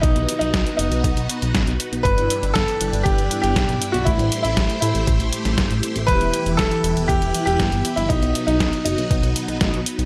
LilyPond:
<<
  \new Staff \with { instrumentName = "Analog polysynth" } { \time 4/4 \key b \phrygian \tempo 4 = 119 <b, b>2. <b, b dis' fis' dis''>8 r8 | <g, b e' g' d''>2~ <g, b e' g' d''>8 <g, b e' g' d''>4. | <a, g' c''>2. r8 <a e' g' c''>8 | <e b e' g' e''>2~ <e b e' g' e''>8 <e b e' g' e''>4. |
r2. <b, b dis' fis' dis''>8 r8 | }
  \new Staff \with { instrumentName = "Grand piano" } { \time 4/4 \key b \phrygian dis'8. dis'8. dis'4 r4. | b'4 a'4 g'8. g'4 fis'16 | e'8. e'8. e'4 r4. | b'4 a'4 g'8. g'4 e'16 |
dis'8. dis'8. dis'4 r4. | }
  \new Staff \with { instrumentName = "String machine" } { \time 4/4 \key b \phrygian << { <b fis'>1 | <g d' b'>1 | <a c''>1 | <e e' b'>1 |
<fis dis'>1 | } \\ { dis'1 | e'1 | g'1~ | g'1 |
b1 | } >> }
  \new Staff \with { instrumentName = "Analog synth bass" } { \clef bass \time 4/4 \key b \phrygian b,,16 b,,16 r16 b,,16 b,,16 r16 fis,,16 b,,16 b,,16 b,,16 r16 b,,16 a,,16 b,,16 r16 b,,16 | g,,16 g,,16 r16 g,,16 g,,16 r16 g,,16 g,,16 g,,16 g,,16 r16 g,,16 b,,16 b,,16 r16 b,,16 | a,,16 a,,16 r16 a,,16 a,,16 r16 a,16 a,,16 a,,16 a,,16 r16 a,,16 g,,16 a,,16 r16 a,,16 | e,,16 e,,16 r16 e,,16 e,,16 r16 e,,16 e,,16 e,,16 e,,16 r16 e,,16 g,,16 g,,16 r16 g,,16 |
b,,16 b,,16 r16 b,,16 b,,16 r16 fis,,16 b,,16 b,,16 b,,16 r16 b,,16 a,,16 b,,16 r16 b,,16 | }
  \new DrumStaff \with { instrumentName = "Drums" } \drummode { \time 4/4 <hh bd>16 hh16 hh16 hh16 <hh bd sn>16 hh16 hh16 hh16 <hh bd>16 hh16 hh16 hh16 <hh bd sn>16 hh16 hh16 hh16 | <hh bd>16 hh16 hh16 hh16 <hh bd sn>16 hh16 hh16 hh16 <hh bd>16 hh16 hh16 hh16 <hh bd sn>16 hh16 hh16 hh16 | <hh bd>16 hh16 hh16 hh16 <hh bd sn>16 hh16 hh16 hh16 <hh bd>16 hh16 hh16 <hh sn>16 <hh bd sn>16 hh16 hh16 hh16 | <hh bd>16 hh16 hh16 hh16 <hh bd sn>16 hh16 hh16 hh16 <hh bd>16 hh16 hh16 hh16 <hh bd sn>16 hh16 hh16 hh16 |
<hh bd>16 hh16 hh16 hh16 <hh bd sn>16 hh16 hh16 hh16 <hh bd>16 hh16 hh16 hh16 <hh bd sn>16 hh16 hh16 hh16 | }
>>